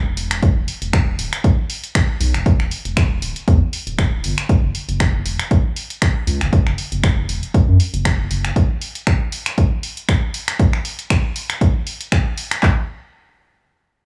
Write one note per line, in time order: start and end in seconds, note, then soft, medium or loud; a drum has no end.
0.00 0.13 E1 loud
0.17 0.52 E1 medium
0.17 open hi-hat loud
0.31 finger snap medium
0.31 closed hi-hat medium
0.43 kick loud
0.43 closed hi-hat medium
0.57 0.66 E1 loud
0.68 open hi-hat loud
0.82 1.15 E1 medium
0.82 closed hi-hat medium
0.93 finger snap loud
0.93 kick loud
0.93 closed hi-hat soft
1.19 1.30 D1 loud
1.19 open hi-hat loud
1.33 finger snap medium
1.33 closed hi-hat medium
1.44 kick loud
1.44 closed hi-hat medium
1.70 open hi-hat loud
1.84 closed hi-hat medium
1.95 finger snap loud
1.95 kick loud
1.95 closed hi-hat medium
2.20 2.36 B1 medium
2.20 open hi-hat loud
2.34 2.44 E1 medium
2.34 finger snap medium
2.34 closed hi-hat medium
2.46 kick loud
2.46 closed hi-hat soft
2.60 2.69 E1 loud
2.60 finger snap soft
2.71 open hi-hat loud
2.85 3.19 E1 medium
2.85 closed hi-hat medium
2.97 finger snap loud
2.97 kick loud
2.97 closed hi-hat soft
3.22 3.33 D1 loud
3.22 open hi-hat loud
3.36 closed hi-hat medium
3.48 3.59 E2 loud
3.48 kick loud
3.48 closed hi-hat medium
3.73 open hi-hat loud
3.87 4.25 D1 medium
3.87 closed hi-hat medium
3.99 finger snap loud
3.99 kick loud
3.99 closed hi-hat medium
4.24 4.35 G1 medium
4.24 open hi-hat loud
4.38 finger snap medium
4.38 closed hi-hat medium
4.49 kick loud
4.49 closed hi-hat medium
4.63 4.72 F#1 loud
4.75 open hi-hat loud
4.89 5.22 F#1 loud
4.89 closed hi-hat medium
5.00 finger snap loud
5.00 kick loud
5.00 closed hi-hat soft
5.26 5.37 E1 loud
5.26 open hi-hat loud
5.39 finger snap medium
5.39 closed hi-hat medium
5.51 kick loud
5.51 closed hi-hat medium
5.76 open hi-hat loud
5.90 closed hi-hat medium
6.02 finger snap loud
6.02 kick loud
6.02 closed hi-hat medium
6.27 6.43 C#2 medium
6.27 open hi-hat loud
6.41 6.50 F#1 medium
6.41 finger snap medium
6.41 closed hi-hat medium
6.53 kick loud
6.53 closed hi-hat medium
6.67 6.76 F#1 loud
6.67 finger snap soft
6.78 open hi-hat loud
6.92 7.25 F#1 medium
6.92 closed hi-hat medium
7.04 finger snap loud
7.04 kick loud
7.04 closed hi-hat medium
7.29 7.40 E1 loud
7.29 open hi-hat loud
7.43 closed hi-hat medium
7.54 kick loud
7.54 closed hi-hat medium
7.68 7.78 F#2 medium
7.80 open hi-hat loud
7.94 8.27 F#1 loud
7.94 closed hi-hat medium
8.05 finger snap loud
8.05 kick loud
8.05 closed hi-hat medium
8.31 8.52 F#1 medium
8.31 open hi-hat loud
8.45 finger snap medium
8.45 closed hi-hat medium
8.56 kick loud
8.56 closed hi-hat medium
8.81 open hi-hat loud
8.95 closed hi-hat medium
9.07 finger snap loud
9.07 kick loud
9.07 closed hi-hat medium
9.32 open hi-hat loud
9.46 finger snap medium
9.46 closed hi-hat medium
9.58 kick loud
9.58 closed hi-hat medium
9.83 open hi-hat loud
9.97 closed hi-hat medium
10.09 finger snap loud
10.09 kick loud
10.09 closed hi-hat medium
10.34 open hi-hat loud
10.48 finger snap medium
10.48 closed hi-hat medium
10.59 kick loud
10.59 closed hi-hat medium
10.73 finger snap soft
10.85 open hi-hat loud
10.99 closed hi-hat medium
11.10 finger snap loud
11.10 kick loud
11.10 closed hi-hat medium
11.36 open hi-hat loud
11.50 finger snap medium
11.50 closed hi-hat medium
11.61 kick loud
11.61 closed hi-hat medium
11.87 open hi-hat loud
12.01 closed hi-hat medium
12.12 finger snap loud
12.12 kick loud
12.12 closed hi-hat medium
12.38 open hi-hat loud
12.51 finger snap medium
12.51 closed hi-hat medium
12.63 kick loud
12.63 clap medium